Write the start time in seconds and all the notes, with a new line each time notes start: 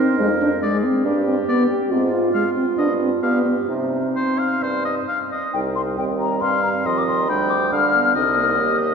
Already playing: A#4
0.00 C4
0.19 F2 G#3
0.41 D4
0.62 G#3 G#4 D5
0.84 C4
1.05 G2 D4 G4
1.27 C4
1.48 B3 D5
1.70 G4
1.91 G#2 C4 F4
2.12 F4
2.34 G#3 F5
2.56 C4
2.78 G2 D4 D#5
3.01 C4
3.22 G2 B3 G4 F5
3.45 B3
3.68 C3 C4 D#4
4.16 C5
4.39 F5
4.62 G2 C5
4.85 D#5
5.08 F5
5.32 D#5
5.53 C2 G3 D#4 G5
5.76 C6
5.98 D#2 C4 G5
6.19 A#5
6.41 G2 C4 F5 C6
6.63 A#5
6.85 D#2 F3 D#5 C6
6.98 D6
7.07 C6
7.29 D2 G3 D4 G5 B5
7.50 D6
7.72 D3 G3 D4 F5 F6
7.94 B3
8.15 C2 C4 D#4 D#5
8.37 A#3
8.58 D#2 G4